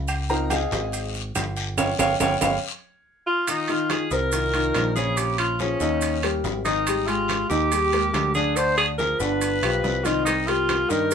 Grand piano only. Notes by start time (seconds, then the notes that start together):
0.29 F3 C4 D#4 A#4 A#5
0.52 G#4 D#5 F5 G#5
1.78 C#5 F5 G5
2.00 C#5 F5 G5
2.21 C#5 F5 G5
2.43 C#5 F5 G5
3.48 D#3 D#4 F4
3.69 D#3 D#4 F4
4.12 C3 C4 C5
4.33 D#3 D#4 F4
4.54 D#3 D#4 F4
4.96 C#3 C#4 C#5
5.17 C#3 C#4 C#5
5.60 F3 F4 G#4
5.81 D#3 D#4 D#5
6.23 G3 G4 A#4
6.65 D#3 D#4 D#5
6.88 G3 G4 G#4
7.08 G#3 G4 G#4
7.51 D#3 D#4 D#5
7.72 G3 G4 G#4
7.94 G#3 G4 A#4
8.35 D3 D4 D5
8.57 D3 D4 D5
8.99 F3 F4 G#4
9.20 D3 D4 D5
9.63 F3 F4 G4
10.05 D#3 D#4 D#5
10.27 G3 G4 A#4
10.49 G3 G4 A#4
10.90 D#3 D#4 D#5
11.11 G3 G4